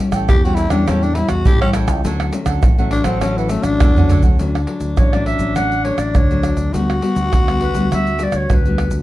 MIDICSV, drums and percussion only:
0, 0, Header, 1, 4, 480
1, 0, Start_track
1, 0, Key_signature, 2, "major"
1, 0, Tempo, 586510
1, 1675, Time_signature, 4, 2, 24, 8
1, 7386, End_track
2, 0, Start_track
2, 0, Title_t, "Pandeiro"
2, 99, Note_on_c, 9, 54, 60
2, 181, Note_off_c, 9, 54, 0
2, 235, Note_on_c, 9, 54, 86
2, 317, Note_off_c, 9, 54, 0
2, 369, Note_on_c, 9, 54, 37
2, 451, Note_off_c, 9, 54, 0
2, 466, Note_on_c, 9, 54, 64
2, 548, Note_off_c, 9, 54, 0
2, 576, Note_on_c, 9, 54, 60
2, 658, Note_off_c, 9, 54, 0
2, 717, Note_on_c, 9, 54, 81
2, 798, Note_off_c, 9, 54, 0
2, 841, Note_on_c, 9, 54, 35
2, 923, Note_off_c, 9, 54, 0
2, 942, Note_on_c, 9, 54, 72
2, 1024, Note_off_c, 9, 54, 0
2, 1052, Note_on_c, 9, 54, 58
2, 1134, Note_off_c, 9, 54, 0
2, 1191, Note_on_c, 9, 54, 90
2, 1273, Note_off_c, 9, 54, 0
2, 1323, Note_on_c, 9, 54, 34
2, 1405, Note_off_c, 9, 54, 0
2, 1420, Note_on_c, 9, 54, 75
2, 1502, Note_off_c, 9, 54, 0
2, 1536, Note_on_c, 9, 54, 63
2, 1618, Note_off_c, 9, 54, 0
2, 1675, Note_on_c, 9, 54, 81
2, 1756, Note_off_c, 9, 54, 0
2, 1800, Note_on_c, 9, 54, 36
2, 1882, Note_off_c, 9, 54, 0
2, 1904, Note_on_c, 9, 54, 71
2, 1986, Note_off_c, 9, 54, 0
2, 2012, Note_on_c, 9, 54, 62
2, 2094, Note_off_c, 9, 54, 0
2, 2149, Note_on_c, 9, 54, 86
2, 2231, Note_off_c, 9, 54, 0
2, 2279, Note_on_c, 9, 54, 34
2, 2361, Note_off_c, 9, 54, 0
2, 2380, Note_on_c, 9, 54, 66
2, 2462, Note_off_c, 9, 54, 0
2, 2490, Note_on_c, 9, 54, 59
2, 2572, Note_off_c, 9, 54, 0
2, 2630, Note_on_c, 9, 54, 81
2, 2712, Note_off_c, 9, 54, 0
2, 2766, Note_on_c, 9, 54, 34
2, 2847, Note_off_c, 9, 54, 0
2, 2859, Note_on_c, 9, 54, 69
2, 2941, Note_off_c, 9, 54, 0
2, 2975, Note_on_c, 9, 54, 59
2, 3057, Note_off_c, 9, 54, 0
2, 3113, Note_on_c, 9, 54, 92
2, 3195, Note_off_c, 9, 54, 0
2, 3247, Note_on_c, 9, 54, 36
2, 3329, Note_off_c, 9, 54, 0
2, 3351, Note_on_c, 9, 54, 70
2, 3433, Note_off_c, 9, 54, 0
2, 3458, Note_on_c, 9, 54, 61
2, 3540, Note_off_c, 9, 54, 0
2, 3595, Note_on_c, 9, 54, 70
2, 3677, Note_off_c, 9, 54, 0
2, 3726, Note_on_c, 9, 54, 32
2, 3808, Note_off_c, 9, 54, 0
2, 3823, Note_on_c, 9, 54, 64
2, 3905, Note_off_c, 9, 54, 0
2, 3932, Note_on_c, 9, 54, 53
2, 4014, Note_off_c, 9, 54, 0
2, 4070, Note_on_c, 9, 54, 75
2, 4151, Note_off_c, 9, 54, 0
2, 4200, Note_on_c, 9, 54, 31
2, 4281, Note_off_c, 9, 54, 0
2, 4306, Note_on_c, 9, 54, 57
2, 4388, Note_off_c, 9, 54, 0
2, 4412, Note_on_c, 9, 54, 53
2, 4494, Note_off_c, 9, 54, 0
2, 4549, Note_on_c, 9, 54, 71
2, 4631, Note_off_c, 9, 54, 0
2, 4679, Note_on_c, 9, 54, 31
2, 4761, Note_off_c, 9, 54, 0
2, 4785, Note_on_c, 9, 54, 63
2, 4867, Note_off_c, 9, 54, 0
2, 4893, Note_on_c, 9, 54, 51
2, 4975, Note_off_c, 9, 54, 0
2, 5032, Note_on_c, 9, 54, 82
2, 5114, Note_off_c, 9, 54, 0
2, 5162, Note_on_c, 9, 54, 33
2, 5244, Note_off_c, 9, 54, 0
2, 5266, Note_on_c, 9, 54, 62
2, 5348, Note_off_c, 9, 54, 0
2, 5375, Note_on_c, 9, 54, 52
2, 5457, Note_off_c, 9, 54, 0
2, 5516, Note_on_c, 9, 54, 70
2, 5598, Note_off_c, 9, 54, 0
2, 5645, Note_on_c, 9, 54, 33
2, 5727, Note_off_c, 9, 54, 0
2, 5748, Note_on_c, 9, 54, 64
2, 5830, Note_off_c, 9, 54, 0
2, 5860, Note_on_c, 9, 54, 55
2, 5942, Note_off_c, 9, 54, 0
2, 5997, Note_on_c, 9, 54, 78
2, 6078, Note_off_c, 9, 54, 0
2, 6123, Note_on_c, 9, 54, 31
2, 6205, Note_off_c, 9, 54, 0
2, 6224, Note_on_c, 9, 54, 55
2, 6306, Note_off_c, 9, 54, 0
2, 6338, Note_on_c, 9, 54, 58
2, 6420, Note_off_c, 9, 54, 0
2, 6481, Note_on_c, 9, 54, 74
2, 6563, Note_off_c, 9, 54, 0
2, 6602, Note_on_c, 9, 54, 30
2, 6684, Note_off_c, 9, 54, 0
2, 6703, Note_on_c, 9, 54, 64
2, 6785, Note_off_c, 9, 54, 0
2, 6811, Note_on_c, 9, 54, 54
2, 6893, Note_off_c, 9, 54, 0
2, 6955, Note_on_c, 9, 54, 78
2, 7037, Note_off_c, 9, 54, 0
2, 7083, Note_on_c, 9, 54, 33
2, 7165, Note_off_c, 9, 54, 0
2, 7188, Note_on_c, 9, 54, 67
2, 7269, Note_off_c, 9, 54, 0
2, 7291, Note_on_c, 9, 54, 55
2, 7373, Note_off_c, 9, 54, 0
2, 7386, End_track
3, 0, Start_track
3, 0, Title_t, "Tamborim"
3, 99, Note_on_c, 9, 60, 78
3, 181, Note_off_c, 9, 60, 0
3, 235, Note_on_c, 9, 60, 86
3, 317, Note_off_c, 9, 60, 0
3, 576, Note_on_c, 9, 60, 85
3, 658, Note_off_c, 9, 60, 0
3, 717, Note_on_c, 9, 60, 83
3, 798, Note_off_c, 9, 60, 0
3, 1052, Note_on_c, 9, 60, 78
3, 1134, Note_off_c, 9, 60, 0
3, 1323, Note_on_c, 9, 60, 81
3, 1405, Note_off_c, 9, 60, 0
3, 1420, Note_on_c, 9, 60, 83
3, 1502, Note_off_c, 9, 60, 0
3, 1536, Note_on_c, 9, 60, 86
3, 1618, Note_off_c, 9, 60, 0
3, 1800, Note_on_c, 9, 60, 87
3, 1882, Note_off_c, 9, 60, 0
3, 2012, Note_on_c, 9, 60, 82
3, 2094, Note_off_c, 9, 60, 0
3, 2149, Note_on_c, 9, 60, 83
3, 2231, Note_off_c, 9, 60, 0
3, 2490, Note_on_c, 9, 60, 83
3, 2572, Note_off_c, 9, 60, 0
3, 2630, Note_on_c, 9, 60, 82
3, 2712, Note_off_c, 9, 60, 0
3, 2975, Note_on_c, 9, 60, 68
3, 3057, Note_off_c, 9, 60, 0
3, 3113, Note_on_c, 9, 60, 104
3, 3195, Note_off_c, 9, 60, 0
3, 3726, Note_on_c, 9, 60, 76
3, 3808, Note_off_c, 9, 60, 0
3, 4070, Note_on_c, 9, 60, 78
3, 4151, Note_off_c, 9, 60, 0
3, 4200, Note_on_c, 9, 60, 76
3, 4281, Note_off_c, 9, 60, 0
3, 4549, Note_on_c, 9, 60, 78
3, 4631, Note_off_c, 9, 60, 0
3, 4893, Note_on_c, 9, 60, 74
3, 4975, Note_off_c, 9, 60, 0
3, 5032, Note_on_c, 9, 60, 80
3, 5114, Note_off_c, 9, 60, 0
3, 5266, Note_on_c, 9, 60, 79
3, 5348, Note_off_c, 9, 60, 0
3, 5645, Note_on_c, 9, 60, 74
3, 5727, Note_off_c, 9, 60, 0
3, 5997, Note_on_c, 9, 60, 77
3, 6078, Note_off_c, 9, 60, 0
3, 6123, Note_on_c, 9, 60, 80
3, 6205, Note_off_c, 9, 60, 0
3, 6481, Note_on_c, 9, 60, 74
3, 6563, Note_off_c, 9, 60, 0
3, 6811, Note_on_c, 9, 60, 73
3, 6893, Note_off_c, 9, 60, 0
3, 6955, Note_on_c, 9, 60, 78
3, 7037, Note_off_c, 9, 60, 0
3, 7188, Note_on_c, 9, 60, 78
3, 7269, Note_off_c, 9, 60, 0
3, 7386, End_track
4, 0, Start_track
4, 0, Title_t, "Drums"
4, 99, Note_on_c, 9, 82, 84
4, 99, Note_on_c, 9, 87, 35
4, 181, Note_off_c, 9, 82, 0
4, 181, Note_off_c, 9, 87, 0
4, 235, Note_on_c, 9, 82, 83
4, 235, Note_on_c, 9, 87, 101
4, 317, Note_off_c, 9, 82, 0
4, 317, Note_off_c, 9, 87, 0
4, 369, Note_on_c, 9, 82, 36
4, 451, Note_off_c, 9, 82, 0
4, 466, Note_on_c, 9, 82, 66
4, 548, Note_off_c, 9, 82, 0
4, 576, Note_on_c, 9, 82, 84
4, 576, Note_on_c, 9, 87, 35
4, 658, Note_off_c, 9, 82, 0
4, 658, Note_off_c, 9, 87, 0
4, 717, Note_on_c, 9, 82, 82
4, 717, Note_on_c, 9, 87, 59
4, 798, Note_off_c, 9, 82, 0
4, 798, Note_off_c, 9, 87, 0
4, 841, Note_on_c, 9, 82, 34
4, 923, Note_off_c, 9, 82, 0
4, 1052, Note_on_c, 9, 82, 76
4, 1052, Note_on_c, 9, 87, 33
4, 1134, Note_off_c, 9, 82, 0
4, 1134, Note_off_c, 9, 87, 0
4, 1191, Note_on_c, 9, 82, 87
4, 1191, Note_on_c, 9, 87, 111
4, 1273, Note_off_c, 9, 82, 0
4, 1273, Note_off_c, 9, 87, 0
4, 1323, Note_on_c, 9, 82, 35
4, 1405, Note_off_c, 9, 82, 0
4, 1420, Note_on_c, 9, 82, 76
4, 1502, Note_off_c, 9, 82, 0
4, 1536, Note_on_c, 9, 82, 87
4, 1536, Note_on_c, 9, 87, 35
4, 1618, Note_off_c, 9, 82, 0
4, 1618, Note_off_c, 9, 87, 0
4, 1675, Note_on_c, 9, 82, 80
4, 1675, Note_on_c, 9, 87, 61
4, 1756, Note_off_c, 9, 82, 0
4, 1756, Note_off_c, 9, 87, 0
4, 1800, Note_on_c, 9, 82, 34
4, 1882, Note_off_c, 9, 82, 0
4, 1904, Note_on_c, 9, 82, 71
4, 1986, Note_off_c, 9, 82, 0
4, 2012, Note_on_c, 9, 82, 79
4, 2012, Note_on_c, 9, 87, 34
4, 2094, Note_off_c, 9, 82, 0
4, 2094, Note_off_c, 9, 87, 0
4, 2149, Note_on_c, 9, 82, 86
4, 2149, Note_on_c, 9, 87, 102
4, 2231, Note_off_c, 9, 82, 0
4, 2231, Note_off_c, 9, 87, 0
4, 2279, Note_on_c, 9, 82, 37
4, 2361, Note_off_c, 9, 82, 0
4, 2490, Note_on_c, 9, 82, 85
4, 2490, Note_on_c, 9, 87, 37
4, 2572, Note_off_c, 9, 82, 0
4, 2572, Note_off_c, 9, 87, 0
4, 2630, Note_on_c, 9, 82, 87
4, 2630, Note_on_c, 9, 87, 58
4, 2712, Note_off_c, 9, 82, 0
4, 2712, Note_off_c, 9, 87, 0
4, 2766, Note_on_c, 9, 82, 35
4, 2847, Note_off_c, 9, 82, 0
4, 2859, Note_on_c, 9, 82, 69
4, 2941, Note_off_c, 9, 82, 0
4, 2975, Note_on_c, 9, 82, 82
4, 2975, Note_on_c, 9, 87, 33
4, 3057, Note_off_c, 9, 82, 0
4, 3057, Note_off_c, 9, 87, 0
4, 3113, Note_on_c, 9, 82, 88
4, 3113, Note_on_c, 9, 87, 113
4, 3195, Note_off_c, 9, 82, 0
4, 3195, Note_off_c, 9, 87, 0
4, 3247, Note_on_c, 9, 82, 35
4, 3247, Note_on_c, 9, 87, 101
4, 3329, Note_off_c, 9, 82, 0
4, 3329, Note_off_c, 9, 87, 0
4, 3351, Note_on_c, 9, 82, 74
4, 3351, Note_on_c, 9, 87, 85
4, 3433, Note_off_c, 9, 82, 0
4, 3433, Note_off_c, 9, 87, 0
4, 3458, Note_on_c, 9, 82, 83
4, 3458, Note_on_c, 9, 87, 103
4, 3540, Note_off_c, 9, 82, 0
4, 3540, Note_off_c, 9, 87, 0
4, 3595, Note_on_c, 9, 82, 75
4, 3595, Note_on_c, 9, 87, 49
4, 3677, Note_off_c, 9, 82, 0
4, 3677, Note_off_c, 9, 87, 0
4, 3726, Note_on_c, 9, 82, 31
4, 3808, Note_off_c, 9, 82, 0
4, 3932, Note_on_c, 9, 82, 72
4, 4014, Note_off_c, 9, 82, 0
4, 4070, Note_on_c, 9, 82, 74
4, 4070, Note_on_c, 9, 87, 96
4, 4151, Note_off_c, 9, 82, 0
4, 4151, Note_off_c, 9, 87, 0
4, 4200, Note_on_c, 9, 82, 32
4, 4281, Note_off_c, 9, 82, 0
4, 4412, Note_on_c, 9, 82, 78
4, 4494, Note_off_c, 9, 82, 0
4, 4549, Note_on_c, 9, 82, 77
4, 4549, Note_on_c, 9, 87, 54
4, 4631, Note_off_c, 9, 82, 0
4, 4631, Note_off_c, 9, 87, 0
4, 4679, Note_on_c, 9, 82, 30
4, 4761, Note_off_c, 9, 82, 0
4, 4893, Note_on_c, 9, 82, 71
4, 4975, Note_off_c, 9, 82, 0
4, 5032, Note_on_c, 9, 82, 84
4, 5032, Note_on_c, 9, 87, 99
4, 5114, Note_off_c, 9, 82, 0
4, 5114, Note_off_c, 9, 87, 0
4, 5162, Note_on_c, 9, 82, 33
4, 5244, Note_off_c, 9, 82, 0
4, 5266, Note_on_c, 9, 82, 65
4, 5348, Note_off_c, 9, 82, 0
4, 5375, Note_on_c, 9, 82, 74
4, 5457, Note_off_c, 9, 82, 0
4, 5516, Note_on_c, 9, 82, 73
4, 5516, Note_on_c, 9, 87, 53
4, 5598, Note_off_c, 9, 82, 0
4, 5598, Note_off_c, 9, 87, 0
4, 5645, Note_on_c, 9, 82, 32
4, 5727, Note_off_c, 9, 82, 0
4, 5860, Note_on_c, 9, 82, 70
4, 5942, Note_off_c, 9, 82, 0
4, 5997, Note_on_c, 9, 82, 75
4, 5997, Note_on_c, 9, 87, 89
4, 6078, Note_off_c, 9, 82, 0
4, 6078, Note_off_c, 9, 87, 0
4, 6123, Note_on_c, 9, 82, 33
4, 6205, Note_off_c, 9, 82, 0
4, 6338, Note_on_c, 9, 82, 77
4, 6420, Note_off_c, 9, 82, 0
4, 6481, Note_on_c, 9, 82, 76
4, 6481, Note_on_c, 9, 87, 51
4, 6563, Note_off_c, 9, 82, 0
4, 6563, Note_off_c, 9, 87, 0
4, 6602, Note_on_c, 9, 82, 30
4, 6684, Note_off_c, 9, 82, 0
4, 6703, Note_on_c, 9, 82, 68
4, 6785, Note_off_c, 9, 82, 0
4, 6811, Note_on_c, 9, 82, 76
4, 6893, Note_off_c, 9, 82, 0
4, 6955, Note_on_c, 9, 82, 83
4, 6955, Note_on_c, 9, 87, 98
4, 7037, Note_off_c, 9, 82, 0
4, 7037, Note_off_c, 9, 87, 0
4, 7083, Note_on_c, 9, 82, 31
4, 7165, Note_off_c, 9, 82, 0
4, 7291, Note_on_c, 9, 82, 78
4, 7373, Note_off_c, 9, 82, 0
4, 7386, End_track
0, 0, End_of_file